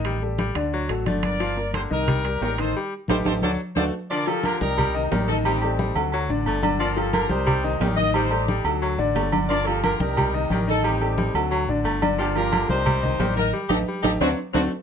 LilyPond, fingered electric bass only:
\new Staff \with { instrumentName = "Fingered electric bass" } { \clef bass \time 4/4 \key g \minor \tempo 4 = 178 a,,4. d,4 a,,8 g,,4~ | g,,4. c,4. a,,4 | r4 a,,8 a,,8 d,8 r8 d,8 r8 | r4. c,4. a,,4~ |
a,,4. d,4 a,,8 g,,4~ | g,,4. c,4. a,,4~ | a,,4. d,4 a,,8 g,,4~ | g,,4. c,4. a,,4~ |
a,,4. d,4 a,,8 g,,4~ | g,,4. c,4. a,,4 | r8 a,,8 r8 a,,8 d,8 r8 d,8 r8 | }